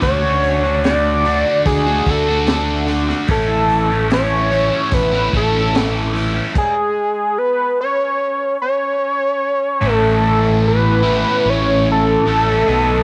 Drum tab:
CC |----------------|----------------|x---------------|----------------|
HH |o-o-o-o-o-o-o-o-|o-o-o-o-o-o-o-o-|----------------|----------------|
SD |----o-------o--o|----o-------o---|----------------|----------------|
BD |o-------o-o-----|o-------o-o-----|o---------------|----------------|